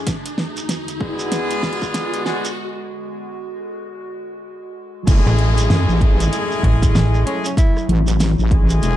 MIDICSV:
0, 0, Header, 1, 10, 480
1, 0, Start_track
1, 0, Key_signature, 3, "minor"
1, 0, Tempo, 625000
1, 58, Time_signature, 4, 2, 24, 8
1, 6887, End_track
2, 0, Start_track
2, 0, Title_t, "Horn section"
2, 0, Program_c, 0, 61
2, 774, Note_on_c, 0, 56, 103
2, 774, Note_on_c, 0, 66, 90
2, 774, Note_on_c, 0, 68, 112
2, 775, Note_on_c, 0, 62, 93
2, 776, Note_on_c, 0, 59, 103
2, 1713, Note_off_c, 0, 56, 0
2, 1713, Note_off_c, 0, 68, 0
2, 1714, Note_off_c, 0, 59, 0
2, 1714, Note_off_c, 0, 62, 0
2, 1714, Note_off_c, 0, 66, 0
2, 1735, Note_on_c, 0, 56, 85
2, 1735, Note_on_c, 0, 59, 83
2, 1735, Note_on_c, 0, 68, 93
2, 1736, Note_on_c, 0, 62, 77
2, 1736, Note_on_c, 0, 66, 77
2, 1899, Note_off_c, 0, 56, 0
2, 1899, Note_off_c, 0, 59, 0
2, 1899, Note_off_c, 0, 62, 0
2, 1899, Note_off_c, 0, 66, 0
2, 1899, Note_off_c, 0, 68, 0
2, 3893, Note_on_c, 0, 61, 99
2, 3895, Note_on_c, 0, 57, 101
2, 3895, Note_on_c, 0, 64, 97
2, 3896, Note_on_c, 0, 56, 103
2, 3896, Note_on_c, 0, 68, 112
2, 4578, Note_off_c, 0, 61, 0
2, 4579, Note_off_c, 0, 56, 0
2, 4579, Note_off_c, 0, 57, 0
2, 4579, Note_off_c, 0, 64, 0
2, 4579, Note_off_c, 0, 68, 0
2, 4617, Note_on_c, 0, 61, 97
2, 4618, Note_on_c, 0, 57, 98
2, 4619, Note_on_c, 0, 56, 105
2, 4619, Note_on_c, 0, 68, 114
2, 4620, Note_on_c, 0, 64, 96
2, 5555, Note_off_c, 0, 61, 0
2, 5556, Note_off_c, 0, 56, 0
2, 5556, Note_off_c, 0, 57, 0
2, 5556, Note_off_c, 0, 68, 0
2, 5557, Note_off_c, 0, 64, 0
2, 5575, Note_on_c, 0, 56, 88
2, 5575, Note_on_c, 0, 57, 85
2, 5575, Note_on_c, 0, 61, 78
2, 5575, Note_on_c, 0, 64, 79
2, 5575, Note_on_c, 0, 68, 96
2, 5739, Note_off_c, 0, 56, 0
2, 5739, Note_off_c, 0, 57, 0
2, 5739, Note_off_c, 0, 61, 0
2, 5739, Note_off_c, 0, 64, 0
2, 5739, Note_off_c, 0, 68, 0
2, 6534, Note_on_c, 0, 61, 92
2, 6535, Note_on_c, 0, 56, 104
2, 6535, Note_on_c, 0, 57, 99
2, 6535, Note_on_c, 0, 64, 92
2, 6535, Note_on_c, 0, 68, 113
2, 6887, Note_off_c, 0, 56, 0
2, 6887, Note_off_c, 0, 57, 0
2, 6887, Note_off_c, 0, 61, 0
2, 6887, Note_off_c, 0, 64, 0
2, 6887, Note_off_c, 0, 68, 0
2, 6887, End_track
3, 0, Start_track
3, 0, Title_t, "Tenor saxophone"
3, 0, Program_c, 1, 66
3, 5574, Note_on_c, 1, 61, 86
3, 5669, Note_off_c, 1, 61, 0
3, 5724, Note_on_c, 1, 61, 82
3, 5785, Note_off_c, 1, 61, 0
3, 5820, Note_on_c, 1, 64, 91
3, 6039, Note_off_c, 1, 64, 0
3, 6887, End_track
4, 0, Start_track
4, 0, Title_t, "Ambient pad"
4, 0, Program_c, 2, 92
4, 50, Note_on_c, 2, 50, 76
4, 51, Note_on_c, 2, 40, 81
4, 52, Note_on_c, 2, 56, 73
4, 54, Note_on_c, 2, 66, 88
4, 3864, Note_off_c, 2, 40, 0
4, 3864, Note_off_c, 2, 50, 0
4, 3865, Note_off_c, 2, 56, 0
4, 3866, Note_off_c, 2, 66, 0
4, 3895, Note_on_c, 2, 57, 91
4, 3897, Note_on_c, 2, 54, 78
4, 3897, Note_on_c, 2, 68, 76
4, 3898, Note_on_c, 2, 64, 76
4, 5798, Note_off_c, 2, 68, 0
4, 5819, Note_on_c, 2, 66, 73
4, 6887, Note_off_c, 2, 54, 0
4, 6887, Note_off_c, 2, 57, 0
4, 6887, Note_off_c, 2, 64, 0
4, 6887, Note_off_c, 2, 66, 0
4, 6887, End_track
5, 0, Start_track
5, 0, Title_t, "FM bass"
5, 0, Program_c, 3, 39
5, 4044, Note_on_c, 3, 33, 102
5, 4364, Note_off_c, 3, 33, 0
5, 5095, Note_on_c, 3, 33, 91
5, 5322, Note_off_c, 3, 33, 0
5, 5338, Note_on_c, 3, 33, 99
5, 5563, Note_off_c, 3, 33, 0
5, 6887, End_track
6, 0, Start_track
6, 0, Title_t, "Wobble bass"
6, 0, Program_c, 4, 39
6, 3897, Note_on_c, 4, 30, 104
6, 4019, Note_off_c, 4, 30, 0
6, 4379, Note_on_c, 4, 42, 102
6, 4501, Note_off_c, 4, 42, 0
6, 4521, Note_on_c, 4, 33, 92
6, 4842, Note_off_c, 4, 33, 0
6, 6057, Note_on_c, 4, 33, 102
6, 6420, Note_off_c, 4, 33, 0
6, 6441, Note_on_c, 4, 33, 96
6, 6762, Note_off_c, 4, 33, 0
6, 6776, Note_on_c, 4, 28, 99
6, 6887, Note_off_c, 4, 28, 0
6, 6887, End_track
7, 0, Start_track
7, 0, Title_t, "Downlifter"
7, 0, Program_c, 5, 103
7, 3897, Note_on_c, 5, 60, 78
7, 6887, Note_off_c, 5, 60, 0
7, 6887, End_track
8, 0, Start_track
8, 0, Title_t, "Riser"
8, 0, Program_c, 6, 103
8, 0, Note_on_c, 6, 60, 76
8, 1976, Note_off_c, 6, 60, 0
8, 6887, End_track
9, 0, Start_track
9, 0, Title_t, "Shekere"
9, 57, Note_on_c, 9, 82, 74
9, 134, Note_off_c, 9, 82, 0
9, 203, Note_on_c, 9, 82, 42
9, 279, Note_off_c, 9, 82, 0
9, 438, Note_on_c, 9, 82, 81
9, 514, Note_off_c, 9, 82, 0
9, 538, Note_on_c, 9, 82, 62
9, 614, Note_off_c, 9, 82, 0
9, 681, Note_on_c, 9, 82, 41
9, 758, Note_off_c, 9, 82, 0
9, 915, Note_on_c, 9, 82, 85
9, 992, Note_off_c, 9, 82, 0
9, 1016, Note_on_c, 9, 82, 65
9, 1093, Note_off_c, 9, 82, 0
9, 1159, Note_on_c, 9, 82, 38
9, 1236, Note_off_c, 9, 82, 0
9, 1398, Note_on_c, 9, 82, 79
9, 1475, Note_off_c, 9, 82, 0
9, 1495, Note_on_c, 9, 82, 71
9, 1572, Note_off_c, 9, 82, 0
9, 1639, Note_on_c, 9, 82, 38
9, 1716, Note_off_c, 9, 82, 0
9, 1882, Note_on_c, 9, 82, 89
9, 1958, Note_off_c, 9, 82, 0
9, 3900, Note_on_c, 9, 82, 69
9, 3977, Note_off_c, 9, 82, 0
9, 4045, Note_on_c, 9, 82, 37
9, 4122, Note_off_c, 9, 82, 0
9, 4284, Note_on_c, 9, 82, 83
9, 4361, Note_off_c, 9, 82, 0
9, 4390, Note_on_c, 9, 82, 60
9, 4466, Note_off_c, 9, 82, 0
9, 4525, Note_on_c, 9, 82, 38
9, 4602, Note_off_c, 9, 82, 0
9, 4767, Note_on_c, 9, 82, 82
9, 4843, Note_off_c, 9, 82, 0
9, 4860, Note_on_c, 9, 82, 66
9, 4936, Note_off_c, 9, 82, 0
9, 5005, Note_on_c, 9, 82, 41
9, 5082, Note_off_c, 9, 82, 0
9, 5244, Note_on_c, 9, 82, 86
9, 5321, Note_off_c, 9, 82, 0
9, 5338, Note_on_c, 9, 82, 67
9, 5415, Note_off_c, 9, 82, 0
9, 5486, Note_on_c, 9, 82, 37
9, 5562, Note_off_c, 9, 82, 0
9, 5719, Note_on_c, 9, 82, 77
9, 5796, Note_off_c, 9, 82, 0
9, 5820, Note_on_c, 9, 82, 74
9, 5897, Note_off_c, 9, 82, 0
9, 5967, Note_on_c, 9, 82, 45
9, 6044, Note_off_c, 9, 82, 0
9, 6199, Note_on_c, 9, 82, 84
9, 6276, Note_off_c, 9, 82, 0
9, 6298, Note_on_c, 9, 82, 67
9, 6375, Note_off_c, 9, 82, 0
9, 6443, Note_on_c, 9, 82, 37
9, 6520, Note_off_c, 9, 82, 0
9, 6678, Note_on_c, 9, 82, 90
9, 6755, Note_off_c, 9, 82, 0
9, 6781, Note_on_c, 9, 82, 74
9, 6857, Note_off_c, 9, 82, 0
9, 6887, End_track
10, 0, Start_track
10, 0, Title_t, "Drums"
10, 51, Note_on_c, 9, 38, 73
10, 51, Note_on_c, 9, 42, 82
10, 52, Note_on_c, 9, 36, 123
10, 128, Note_off_c, 9, 38, 0
10, 128, Note_off_c, 9, 42, 0
10, 129, Note_off_c, 9, 36, 0
10, 196, Note_on_c, 9, 42, 54
10, 273, Note_off_c, 9, 42, 0
10, 290, Note_on_c, 9, 38, 75
10, 367, Note_off_c, 9, 38, 0
10, 436, Note_on_c, 9, 42, 37
10, 513, Note_off_c, 9, 42, 0
10, 529, Note_on_c, 9, 38, 80
10, 529, Note_on_c, 9, 42, 82
10, 606, Note_off_c, 9, 38, 0
10, 606, Note_off_c, 9, 42, 0
10, 677, Note_on_c, 9, 42, 51
10, 754, Note_off_c, 9, 42, 0
10, 772, Note_on_c, 9, 36, 111
10, 849, Note_off_c, 9, 36, 0
10, 1011, Note_on_c, 9, 38, 82
10, 1011, Note_on_c, 9, 42, 81
10, 1088, Note_off_c, 9, 38, 0
10, 1088, Note_off_c, 9, 42, 0
10, 1157, Note_on_c, 9, 42, 54
10, 1233, Note_off_c, 9, 42, 0
10, 1252, Note_on_c, 9, 36, 59
10, 1252, Note_on_c, 9, 38, 85
10, 1326, Note_on_c, 9, 42, 36
10, 1328, Note_off_c, 9, 38, 0
10, 1329, Note_off_c, 9, 36, 0
10, 1397, Note_on_c, 9, 36, 106
10, 1403, Note_off_c, 9, 42, 0
10, 1474, Note_off_c, 9, 36, 0
10, 1492, Note_on_c, 9, 38, 90
10, 1492, Note_on_c, 9, 42, 81
10, 1569, Note_off_c, 9, 38, 0
10, 1569, Note_off_c, 9, 42, 0
10, 1640, Note_on_c, 9, 42, 54
10, 1717, Note_off_c, 9, 42, 0
10, 1735, Note_on_c, 9, 38, 89
10, 1811, Note_off_c, 9, 38, 0
10, 1880, Note_on_c, 9, 42, 36
10, 1957, Note_off_c, 9, 42, 0
10, 3895, Note_on_c, 9, 36, 122
10, 3898, Note_on_c, 9, 42, 69
10, 3898, Note_on_c, 9, 49, 98
10, 3972, Note_off_c, 9, 36, 0
10, 3975, Note_off_c, 9, 42, 0
10, 3975, Note_off_c, 9, 49, 0
10, 4136, Note_on_c, 9, 42, 38
10, 4213, Note_off_c, 9, 42, 0
10, 4284, Note_on_c, 9, 42, 54
10, 4361, Note_off_c, 9, 42, 0
10, 4378, Note_on_c, 9, 38, 127
10, 4455, Note_off_c, 9, 38, 0
10, 4615, Note_on_c, 9, 36, 106
10, 4619, Note_on_c, 9, 42, 38
10, 4692, Note_off_c, 9, 36, 0
10, 4696, Note_off_c, 9, 42, 0
10, 4765, Note_on_c, 9, 42, 55
10, 4841, Note_off_c, 9, 42, 0
10, 4859, Note_on_c, 9, 42, 72
10, 4936, Note_off_c, 9, 42, 0
10, 5096, Note_on_c, 9, 36, 57
10, 5100, Note_on_c, 9, 42, 38
10, 5172, Note_off_c, 9, 36, 0
10, 5177, Note_off_c, 9, 42, 0
10, 5241, Note_on_c, 9, 36, 107
10, 5246, Note_on_c, 9, 42, 56
10, 5318, Note_off_c, 9, 36, 0
10, 5322, Note_off_c, 9, 42, 0
10, 5340, Note_on_c, 9, 38, 127
10, 5417, Note_off_c, 9, 38, 0
10, 5486, Note_on_c, 9, 37, 42
10, 5563, Note_off_c, 9, 37, 0
10, 5582, Note_on_c, 9, 42, 67
10, 5659, Note_off_c, 9, 42, 0
10, 5729, Note_on_c, 9, 42, 57
10, 5806, Note_off_c, 9, 42, 0
10, 5815, Note_on_c, 9, 36, 127
10, 5821, Note_on_c, 9, 42, 70
10, 5892, Note_off_c, 9, 36, 0
10, 5898, Note_off_c, 9, 42, 0
10, 5965, Note_on_c, 9, 37, 42
10, 6042, Note_off_c, 9, 37, 0
10, 6061, Note_on_c, 9, 42, 38
10, 6138, Note_off_c, 9, 42, 0
10, 6205, Note_on_c, 9, 42, 55
10, 6282, Note_off_c, 9, 42, 0
10, 6300, Note_on_c, 9, 38, 127
10, 6300, Note_on_c, 9, 42, 74
10, 6377, Note_off_c, 9, 38, 0
10, 6377, Note_off_c, 9, 42, 0
10, 6535, Note_on_c, 9, 36, 112
10, 6540, Note_on_c, 9, 42, 40
10, 6612, Note_off_c, 9, 36, 0
10, 6617, Note_off_c, 9, 42, 0
10, 6685, Note_on_c, 9, 42, 54
10, 6762, Note_off_c, 9, 42, 0
10, 6780, Note_on_c, 9, 42, 69
10, 6857, Note_off_c, 9, 42, 0
10, 6887, End_track
0, 0, End_of_file